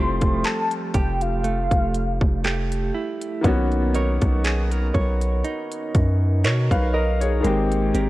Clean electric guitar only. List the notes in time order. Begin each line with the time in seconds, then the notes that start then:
Already playing: F3 A3 E4 G4
0.94 G4
1.44 A3
2.44 A3 G4
2.94 E4
3.44 B3
3.94 D#4 A#4 C#5
4.44 G#4
4.71 A#4
4.94 C#5
5.44 D#4
6.44 D#4 A#4 C#5
6.94 A#4
7.44 G#3
7.94 C4 G4 A#4